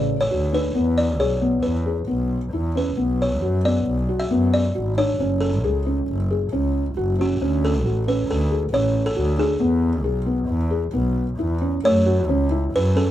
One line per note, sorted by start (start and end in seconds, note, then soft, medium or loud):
0.00 0.22 A1 medium
0.00 0.15 C#3 medium
0.00 0.18 D5 medium
0.21 0.54 C#5 medium
0.31 0.66 D2 medium
0.31 0.45 F#4 medium
0.53 0.67 D4 medium
0.53 0.95 B4 medium
0.75 1.21 E2 medium
0.75 1.04 B3 medium
0.98 1.20 D5 medium
1.19 1.54 B1 medium
1.19 1.34 G#4 medium
1.19 1.65 C#5 medium
1.41 1.71 B3 medium
1.63 1.99 E2 medium
1.63 2.26 B4 medium
1.86 2.00 G#4 soft
2.07 2.44 B1 medium
2.07 2.37 B3 medium
2.53 2.88 E2 medium
2.53 2.68 E4 medium
2.75 2.90 C#4 medium
2.75 3.22 B4 medium
2.97 3.43 B1 medium
2.97 3.26 B3 medium
3.22 3.62 C#5 medium
3.42 3.77 F#2 medium
3.42 3.57 F#4 medium
3.65 3.94 B3 medium
3.65 4.22 D5 medium
3.86 4.22 B1 medium
4.09 4.23 F#4 medium
4.20 4.54 E5 medium
4.31 4.66 F#2 medium
4.31 4.60 B3 medium
4.54 4.95 D5 medium
4.75 5.11 G#1 medium
4.75 4.90 F#4 medium
4.97 5.12 D4 medium
4.97 5.43 C#5 medium
5.20 5.65 F#1 medium
5.20 5.49 C#4 medium
5.41 6.04 A4 medium
5.64 5.99 C#2 medium
5.64 5.78 G#4 medium
5.86 6.15 C#4 medium
6.08 6.43 F#1 medium
6.31 6.45 G#4 medium
6.52 6.87 C#2 medium
6.52 6.82 C#4 medium
6.96 7.31 F#1 medium
6.96 7.11 F#4 medium
7.19 7.33 C#4 medium
7.19 7.61 F#4 medium
7.40 7.86 D2 medium
7.40 7.70 C#4 medium
7.65 8.05 A4 medium
7.84 8.19 A1 medium
7.84 7.99 F#4 medium
8.07 8.36 C#4 medium
8.07 8.30 B4 medium
8.28 8.63 D2 medium
8.28 8.70 A4 medium
8.51 8.65 G#4 medium
8.72 9.07 A1 medium
8.72 9.02 C#4 medium
8.72 9.07 C#5 medium
9.06 9.40 A4 medium
9.16 9.51 D2 medium
9.16 9.31 F#4 medium
9.38 9.53 D4 medium
9.38 11.35 G#4 medium
9.60 10.05 E2 medium
9.60 9.89 B3 medium
10.04 10.39 B1 medium
10.04 10.18 G#4 medium
10.26 10.55 B3 medium
10.48 10.84 E2 medium
10.71 10.85 G#4 medium
10.93 11.29 B1 medium
10.93 11.23 B3 medium
11.39 11.75 E2 medium
11.39 11.54 E4 medium
11.61 11.76 C#4 medium
11.84 12.31 F#2 medium
11.84 11.99 A3 medium
11.84 12.70 C#5 medium
12.06 12.21 F#4 medium
12.29 12.64 C#2 medium
12.29 12.43 C#4 medium
12.51 12.80 E4 medium
12.74 13.09 F#2 medium
12.74 12.98 B4 medium
12.95 13.10 C#4 medium
12.95 13.11 A4 medium